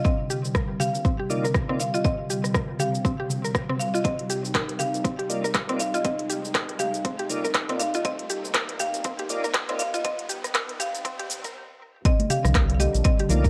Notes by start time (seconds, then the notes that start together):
Already playing: C3 D3 G3, riser
0.05 C4 D#5, kick, shaker
0.30 G4, shaker
0.45 C2, shaker
0.55 A#4, kick, cross-stick, shaker
0.80 G4 F5, mid tom, shaker
0.94 A#1, shaker
1.05 C4, kick, shaker
1.19 G4
1.30 C2 A#3 D#4 F4 D5, shaker
1.44 A#4, shaker
1.54 C2, kick, cross-stick, shaker
1.69 A#3 C4 D#4 F4 D5
1.80 F5, shaker
1.94 F4 D#5, shaker
2.04 C4 D#5, kick, shaker
2.30 G4, shaker
2.44 C2, cross-stick, shaker
2.54 A#4, kick, cross-stick, shaker
2.79 G4 F5, mid tom, shaker
2.95 A#1, shaker
3.05 C4, kick, shaker
3.20 G4
3.30 F2, mid tom, shaker
3.44 A#4, shaker
3.55 kick, cross-stick, shaker
3.69 C4, mid tom
3.79 C2 F5, shaker
3.94 F4 D#5, shaker
4.04 C4 D#4 D#5, kick, closed hi-hat, shaker
4.19 closed hi-hat
4.30 G4, open hi-hat, shaker
4.44 C2, shaker
4.55 A#4, kick, cross-stick, clap, closed hi-hat, shaker
4.69 closed hi-hat
4.79 G4 F5, open hi-hat, mid tom, shaker
4.94 A#1, closed hi-hat, shaker
5.04 C4, kick, closed hi-hat, shaker
5.19 G4, closed hi-hat
5.29 C2 A#3 D#4 F4 D5, open hi-hat, shaker
5.44 A#4, shaker
5.55 C2, kick, cross-stick, clap, closed hi-hat, shaker
5.69 A#3 C4 D#4 F4 D5, closed hi-hat
5.79 F5, open hi-hat, shaker
5.94 F4 D#5, closed hi-hat, shaker
6.05 C4 D#5, kick, closed hi-hat, shaker
6.19 closed hi-hat
6.30 G4, open hi-hat, shaker
6.45 C2, shaker
6.55 A#4, kick, cross-stick, clap, closed hi-hat, shaker
6.69 closed hi-hat
6.79 G4 F5, open hi-hat, mid tom, shaker
6.94 A#1, closed hi-hat, shaker
7.05 C4, kick, closed hi-hat, shaker
7.19 G4, closed hi-hat
7.29 F2 A#3 D#4 F4 D5, open hi-hat, mid tom, shaker
7.45 A#4, shaker
7.54 kick, cross-stick, clap, closed hi-hat, shaker
7.69 A#3 C4 D#4 F4 D5, closed hi-hat, mid tom
7.79 C2 F5, open hi-hat, shaker
7.94 F4 D#5, closed hi-hat, shaker
8.05 C4 D#5, kick, closed hi-hat, shaker
8.19 closed hi-hat
8.29 G4, open hi-hat, shaker
8.44 C2, shaker
8.54 A#4, kick, cross-stick, clap, closed hi-hat, shaker
8.69 closed hi-hat
8.79 G4 F5, open hi-hat, mid tom, shaker
8.94 A#1, closed hi-hat, shaker
9.04 C4, kick, closed hi-hat, shaker
9.19 G4, closed hi-hat
9.29 C2 A#3 D#4 F4 D5, open hi-hat, shaker
9.44 A#4, shaker
9.54 C2, kick, cross-stick, clap, closed hi-hat, shaker
9.69 A#3 C4 D#4 F4 D5, closed hi-hat
9.79 F5, open hi-hat, shaker
9.94 F4 D#5, closed hi-hat, shaker
10.04 C4 D#5, kick, closed hi-hat, shaker
10.19 closed hi-hat
10.29 G4, open hi-hat, shaker
10.44 C2, cross-stick, closed hi-hat, shaker
10.55 A#4, kick, cross-stick, clap, closed hi-hat, shaker
10.69 closed hi-hat
10.80 G4 F5, open hi-hat, mid tom, shaker
10.94 A#1, closed hi-hat, shaker
11.05 C4, kick, closed hi-hat, shaker
11.19 G4, closed hi-hat
11.30 open hi-hat, mid tom, shaker
11.44 A#4, kick, closed hi-hat, shaker
12.05 C3 D3 G3 C4 D#5, kick, closed hi-hat, muted conga, shaker
12.20 closed hi-hat, high conga
12.30 G4 F5, open hi-hat, mid tom, muted conga, shaker
12.44 C2, cross-stick, mid tom, low conga, shaker
12.55 A#4, kick, cross-stick, clap, closed hi-hat, muted conga, high conga, shaker
12.70 closed hi-hat
12.74 F5
12.79 G4 D#5, open hi-hat, muted conga, high conga, shaker
12.94 A#1, closed hi-hat, shaker
13.04 C4 D#5, kick, closed hi-hat, shaker
13.19 G4, closed hi-hat, muted conga
13.29 C2 A#3 D#4 F4 D5, open hi-hat, high conga, low conga, shaker
13.44 A#4, kick, muted conga, shaker